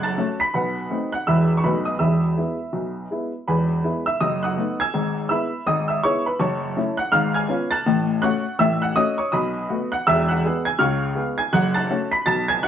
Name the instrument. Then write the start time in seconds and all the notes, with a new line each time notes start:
upright piano
Already playing: F#1 F#2 F#5 F#6
0.03 A5 F#6 A6
0.18 A3 C#4 F#4
0.40 B5 B6
0.54 B1 B2 B4 F#5 B5
0.90 A3 C4 D#4
1.12 F#5 F#6
1.27 E1 E2 G#3 B3 E4 E5 B5 E6
1.57 C#6
1.64 B1 B2 A3 B3 D#4 B4 B5
1.85 D#5 D#6
1.99 E1 E2 E5 B5 E6
2.37 G#3 B3 E4
2.73 B1 B2
3.11 G#3 B3 E4
3.48 E1 E2 B4 G#5 B5
3.84 G#3 B3 E4
4.06 E5 E6
4.21 F#1 F#2 D#5 D#6
4.43 F#5 D#6 F#6
4.57 A3 B3 D#4
4.80 G#5 E6 G#6
4.94 G#1 G#2
5.29 G#3 B3 E4 E5 B5 E6
5.66 G#1 G#2 D#5 D#6
5.88 E5 E6
6.03 G#3 B3 E4 C#5 C#6
6.26 B4 B5
6.39 F#1 F#2 C#5 A5 C#6
6.77 A3 C#4 E4
6.97 F#5 F#6
7.12 G#1 G#2 F5 F6
7.34 G#5 F6 G#6
7.48 B3 C#4 F4
7.71 A5 F#6 A6
7.86 A1 A2
8.22 A3 C#4 F#4 F#5 C#6 F#6
8.59 A1 A2 E5 E6
8.82 F#5 F#6
8.95 A3 C#4 F#4 D#5 D#6
9.18 C#5 C#6
9.32 B1 B2 D#5 B5 D#6
9.69 A3 B3 F#4
9.92 F#5 F#6
10.07 E1 E2 E5 E6
10.28 F#5 F#6
10.45 G#3 B3 G#4
10.65 G#5 G#6
10.79 C#2 C#3 F5 C#6 F6
11.15 G#3 B3 G#4
11.38 G#5 G#6
11.53 F#1 F#2 F#5 F#6
11.74 A5 F#6 A6
11.90 A3 C#4 F#4
12.12 B5 B6
12.26 B1 B2 A5 A6
12.48 G#5 G#6
12.63 B3 D#4 F#4 F#5 F#6